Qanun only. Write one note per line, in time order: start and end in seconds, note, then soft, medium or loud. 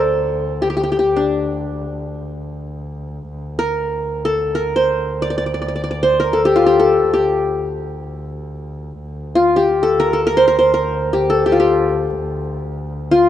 0.00 1.10 A4 medium
0.00 0.69 C5 medium
0.00 0.50 D5 medium
0.62 0.69 G4 medium
0.70 0.76 G4 medium
0.77 0.83 G4 medium
0.83 0.91 G4 medium
0.92 0.98 G4 medium
0.99 2.24 G4 soft
1.16 2.79 D4 medium
3.59 4.31 A#4 medium
4.25 4.61 A4 medium
4.55 5.68 A#4 medium
4.76 5.81 C5 medium
5.22 5.30 D5 medium
5.30 5.37 D5 medium
5.38 5.46 D5 medium
5.46 5.54 D5 soft
5.54 5.61 D5 medium
5.62 5.68 D5 soft
5.68 5.75 D5 medium
5.76 5.83 D5 soft
5.84 5.90 D5 medium
5.91 6.89 D5 medium
6.03 7.08 C5 medium
6.20 6.39 A#4 medium
6.33 6.79 A4 medium
6.45 6.66 G4 medium
6.56 7.90 F4 medium
6.66 7.13 G4 medium
6.80 7.97 A4 medium
7.13 8.92 G4 medium
9.35 10.70 F4 medium
9.56 10.82 G4 medium
9.83 10.06 A4 medium
10.00 10.19 A#4 medium
10.13 10.33 A4 medium
10.27 10.47 A#4 medium
10.37 10.58 C5 medium
10.48 10.73 A#4 medium
10.59 11.64 C5 medium
10.74 11.36 A#4 medium
11.13 11.45 G4 medium
11.30 12.47 A4 medium
11.46 11.59 G4 medium
11.52 12.87 F4 medium
11.60 12.85 G4 medium
13.11 13.29 F4 medium